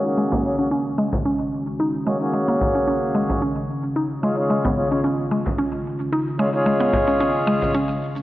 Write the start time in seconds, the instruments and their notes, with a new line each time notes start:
Already playing: ambient pad C#3 D#3 G#3 C#4, synth pluck G#3
0.04 harmonium A#3 C#4 F#4 G#4 C#5, cabasa
0.17 synth pluck G#3, cabasa
0.32 synth pluck A#3, frame drum
0.43 harmonium A#3 C#4 F#4 G#4 C#5
0.58 harmonium A#3 C#4 F#4 G#4 C#5, synth pluck C#4, cabasa
0.71 synth pluck C#4, cabasa
0.87 cabasa
0.98 synth pluck G#3
1.05 ambient pad F#4
1.13 frame drum, cabasa
1.26 synth pluck C#4, cabasa
1.41 cabasa
1.67 cabasa
1.80 synth pluck D#4, cabasa
1.94 cabasa
2.05 synth pluck G#3, harmonium A#3 C#4 F#4 G#4 C#5
2.18 harmonium A#3 C#4 F#4 G#4 C#5, cabasa
2.34 synth pluck G#3, cabasa
2.48 synth pluck A#3
2.61 frame drum
2.75 synth pluck C#4, cabasa
2.88 synth pluck C#4, cabasa
3.03 cabasa
3.15 synth pluck G#3
3.29 frame drum, cabasa
3.42 ambient pad C#3, synth pluck C#4, cabasa
3.57 cabasa
3.84 cabasa
3.96 synth pluck D#4, cabasa
4.04 ambient pad F4
4.11 cabasa
4.22 harmonium G#3 C#4 F4 G#4 C#5, synth pluck G#3
4.36 harmonium G#3 C#4 F4 G#4 C#5, cabasa
4.50 synth pluck G#3, cabasa
4.65 synth pluck B3, frame drum
4.76 harmonium G#3 C#4 F4 G#4 C#5
4.90 harmonium G#3 C#4 F4 G#4 C#5, synth pluck C#4, cabasa
5.04 synth pluck C#4, cabasa
5.19 cabasa
5.31 synth pluck G#3
5.46 frame drum, cabasa
5.58 synth pluck C#4, cabasa
5.73 cabasa
6.00 cabasa
6.12 synth pluck D#4, cabasa
6.28 cabasa
6.38 harmonium G#3 C#4 F4 G#4 C#5, synth pluck G#3
6.51 harmonium G#3 C#4 F4 G#4 C#5, cabasa
6.66 synth pluck G#3, cabasa
6.81 synth pluck B3, cabasa
6.93 frame drum
7.08 synth pluck C#4, cabasa
7.21 synth pluck C#4, cabasa
7.36 cabasa
7.47 synth pluck G#3
7.62 frame drum, cabasa
7.74 synth pluck C#4, cabasa
7.84 ambient pad D#3
7.90 cabasa
8.05 ambient pad C#4
8.16 cabasa